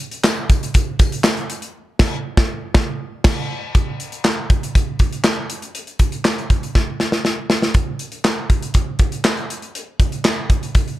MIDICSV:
0, 0, Header, 1, 2, 480
1, 0, Start_track
1, 0, Tempo, 500000
1, 1677, Time_signature, 4, 2, 24, 8
1, 10554, End_track
2, 0, Start_track
2, 0, Title_t, "Drums"
2, 0, Note_on_c, 9, 54, 40
2, 93, Note_off_c, 9, 54, 0
2, 110, Note_on_c, 9, 42, 48
2, 206, Note_off_c, 9, 42, 0
2, 232, Note_on_c, 9, 38, 98
2, 235, Note_on_c, 9, 39, 79
2, 244, Note_on_c, 9, 54, 77
2, 328, Note_off_c, 9, 38, 0
2, 331, Note_off_c, 9, 39, 0
2, 340, Note_off_c, 9, 54, 0
2, 475, Note_on_c, 9, 42, 64
2, 476, Note_on_c, 9, 36, 84
2, 485, Note_on_c, 9, 54, 35
2, 571, Note_off_c, 9, 42, 0
2, 572, Note_off_c, 9, 36, 0
2, 581, Note_off_c, 9, 54, 0
2, 604, Note_on_c, 9, 42, 54
2, 700, Note_off_c, 9, 42, 0
2, 713, Note_on_c, 9, 42, 80
2, 719, Note_on_c, 9, 36, 75
2, 728, Note_on_c, 9, 54, 41
2, 809, Note_off_c, 9, 42, 0
2, 815, Note_off_c, 9, 36, 0
2, 824, Note_off_c, 9, 54, 0
2, 953, Note_on_c, 9, 42, 73
2, 956, Note_on_c, 9, 36, 84
2, 963, Note_on_c, 9, 54, 51
2, 1049, Note_off_c, 9, 42, 0
2, 1052, Note_off_c, 9, 36, 0
2, 1059, Note_off_c, 9, 54, 0
2, 1078, Note_on_c, 9, 42, 52
2, 1174, Note_off_c, 9, 42, 0
2, 1190, Note_on_c, 9, 38, 102
2, 1194, Note_on_c, 9, 39, 87
2, 1203, Note_on_c, 9, 54, 85
2, 1286, Note_off_c, 9, 38, 0
2, 1290, Note_off_c, 9, 39, 0
2, 1299, Note_off_c, 9, 54, 0
2, 1314, Note_on_c, 9, 42, 34
2, 1410, Note_off_c, 9, 42, 0
2, 1437, Note_on_c, 9, 42, 65
2, 1449, Note_on_c, 9, 54, 42
2, 1533, Note_off_c, 9, 42, 0
2, 1545, Note_off_c, 9, 54, 0
2, 1556, Note_on_c, 9, 42, 44
2, 1652, Note_off_c, 9, 42, 0
2, 1914, Note_on_c, 9, 38, 93
2, 1914, Note_on_c, 9, 49, 74
2, 1918, Note_on_c, 9, 36, 92
2, 2010, Note_off_c, 9, 38, 0
2, 2010, Note_off_c, 9, 49, 0
2, 2014, Note_off_c, 9, 36, 0
2, 2279, Note_on_c, 9, 36, 98
2, 2279, Note_on_c, 9, 38, 92
2, 2375, Note_off_c, 9, 36, 0
2, 2375, Note_off_c, 9, 38, 0
2, 2635, Note_on_c, 9, 38, 98
2, 2638, Note_on_c, 9, 36, 93
2, 2731, Note_off_c, 9, 38, 0
2, 2734, Note_off_c, 9, 36, 0
2, 3113, Note_on_c, 9, 38, 101
2, 3113, Note_on_c, 9, 49, 75
2, 3117, Note_on_c, 9, 36, 109
2, 3209, Note_off_c, 9, 38, 0
2, 3209, Note_off_c, 9, 49, 0
2, 3213, Note_off_c, 9, 36, 0
2, 3598, Note_on_c, 9, 42, 65
2, 3599, Note_on_c, 9, 36, 82
2, 3694, Note_off_c, 9, 42, 0
2, 3695, Note_off_c, 9, 36, 0
2, 3839, Note_on_c, 9, 42, 59
2, 3935, Note_off_c, 9, 42, 0
2, 3957, Note_on_c, 9, 42, 42
2, 4053, Note_off_c, 9, 42, 0
2, 4076, Note_on_c, 9, 38, 88
2, 4080, Note_on_c, 9, 39, 74
2, 4172, Note_off_c, 9, 38, 0
2, 4176, Note_off_c, 9, 39, 0
2, 4320, Note_on_c, 9, 36, 81
2, 4320, Note_on_c, 9, 42, 50
2, 4416, Note_off_c, 9, 36, 0
2, 4416, Note_off_c, 9, 42, 0
2, 4448, Note_on_c, 9, 42, 48
2, 4544, Note_off_c, 9, 42, 0
2, 4562, Note_on_c, 9, 36, 73
2, 4562, Note_on_c, 9, 42, 75
2, 4658, Note_off_c, 9, 36, 0
2, 4658, Note_off_c, 9, 42, 0
2, 4793, Note_on_c, 9, 42, 70
2, 4798, Note_on_c, 9, 36, 68
2, 4889, Note_off_c, 9, 42, 0
2, 4894, Note_off_c, 9, 36, 0
2, 4920, Note_on_c, 9, 42, 42
2, 5016, Note_off_c, 9, 42, 0
2, 5033, Note_on_c, 9, 38, 96
2, 5037, Note_on_c, 9, 39, 74
2, 5129, Note_off_c, 9, 38, 0
2, 5133, Note_off_c, 9, 39, 0
2, 5277, Note_on_c, 9, 42, 68
2, 5373, Note_off_c, 9, 42, 0
2, 5398, Note_on_c, 9, 42, 39
2, 5494, Note_off_c, 9, 42, 0
2, 5518, Note_on_c, 9, 42, 59
2, 5614, Note_off_c, 9, 42, 0
2, 5637, Note_on_c, 9, 42, 30
2, 5733, Note_off_c, 9, 42, 0
2, 5753, Note_on_c, 9, 42, 67
2, 5756, Note_on_c, 9, 36, 65
2, 5849, Note_off_c, 9, 42, 0
2, 5852, Note_off_c, 9, 36, 0
2, 5876, Note_on_c, 9, 42, 43
2, 5972, Note_off_c, 9, 42, 0
2, 5999, Note_on_c, 9, 38, 93
2, 6002, Note_on_c, 9, 39, 70
2, 6095, Note_off_c, 9, 38, 0
2, 6098, Note_off_c, 9, 39, 0
2, 6128, Note_on_c, 9, 42, 28
2, 6224, Note_off_c, 9, 42, 0
2, 6241, Note_on_c, 9, 36, 65
2, 6243, Note_on_c, 9, 42, 54
2, 6337, Note_off_c, 9, 36, 0
2, 6339, Note_off_c, 9, 42, 0
2, 6367, Note_on_c, 9, 42, 45
2, 6463, Note_off_c, 9, 42, 0
2, 6482, Note_on_c, 9, 38, 47
2, 6483, Note_on_c, 9, 36, 71
2, 6578, Note_off_c, 9, 38, 0
2, 6579, Note_off_c, 9, 36, 0
2, 6719, Note_on_c, 9, 38, 55
2, 6815, Note_off_c, 9, 38, 0
2, 6837, Note_on_c, 9, 38, 58
2, 6933, Note_off_c, 9, 38, 0
2, 6958, Note_on_c, 9, 38, 64
2, 7054, Note_off_c, 9, 38, 0
2, 7197, Note_on_c, 9, 38, 84
2, 7293, Note_off_c, 9, 38, 0
2, 7319, Note_on_c, 9, 38, 65
2, 7415, Note_off_c, 9, 38, 0
2, 7433, Note_on_c, 9, 42, 60
2, 7437, Note_on_c, 9, 36, 80
2, 7529, Note_off_c, 9, 42, 0
2, 7533, Note_off_c, 9, 36, 0
2, 7673, Note_on_c, 9, 42, 58
2, 7769, Note_off_c, 9, 42, 0
2, 7793, Note_on_c, 9, 42, 44
2, 7889, Note_off_c, 9, 42, 0
2, 7916, Note_on_c, 9, 38, 84
2, 7920, Note_on_c, 9, 39, 68
2, 8012, Note_off_c, 9, 38, 0
2, 8016, Note_off_c, 9, 39, 0
2, 8157, Note_on_c, 9, 42, 59
2, 8158, Note_on_c, 9, 36, 75
2, 8253, Note_off_c, 9, 42, 0
2, 8254, Note_off_c, 9, 36, 0
2, 8280, Note_on_c, 9, 42, 47
2, 8376, Note_off_c, 9, 42, 0
2, 8390, Note_on_c, 9, 42, 78
2, 8398, Note_on_c, 9, 36, 71
2, 8486, Note_off_c, 9, 42, 0
2, 8494, Note_off_c, 9, 36, 0
2, 8629, Note_on_c, 9, 42, 62
2, 8635, Note_on_c, 9, 36, 76
2, 8725, Note_off_c, 9, 42, 0
2, 8731, Note_off_c, 9, 36, 0
2, 8756, Note_on_c, 9, 42, 46
2, 8852, Note_off_c, 9, 42, 0
2, 8877, Note_on_c, 9, 38, 93
2, 8880, Note_on_c, 9, 39, 79
2, 8973, Note_off_c, 9, 38, 0
2, 8976, Note_off_c, 9, 39, 0
2, 8997, Note_on_c, 9, 42, 27
2, 9093, Note_off_c, 9, 42, 0
2, 9122, Note_on_c, 9, 42, 61
2, 9218, Note_off_c, 9, 42, 0
2, 9239, Note_on_c, 9, 42, 35
2, 9335, Note_off_c, 9, 42, 0
2, 9361, Note_on_c, 9, 42, 66
2, 9457, Note_off_c, 9, 42, 0
2, 9596, Note_on_c, 9, 36, 77
2, 9597, Note_on_c, 9, 42, 65
2, 9692, Note_off_c, 9, 36, 0
2, 9693, Note_off_c, 9, 42, 0
2, 9717, Note_on_c, 9, 42, 41
2, 9813, Note_off_c, 9, 42, 0
2, 9838, Note_on_c, 9, 38, 89
2, 9842, Note_on_c, 9, 39, 71
2, 9934, Note_off_c, 9, 38, 0
2, 9938, Note_off_c, 9, 39, 0
2, 10078, Note_on_c, 9, 36, 70
2, 10078, Note_on_c, 9, 42, 55
2, 10174, Note_off_c, 9, 36, 0
2, 10174, Note_off_c, 9, 42, 0
2, 10203, Note_on_c, 9, 42, 46
2, 10299, Note_off_c, 9, 42, 0
2, 10318, Note_on_c, 9, 42, 82
2, 10320, Note_on_c, 9, 36, 76
2, 10414, Note_off_c, 9, 42, 0
2, 10416, Note_off_c, 9, 36, 0
2, 10441, Note_on_c, 9, 42, 31
2, 10537, Note_off_c, 9, 42, 0
2, 10554, End_track
0, 0, End_of_file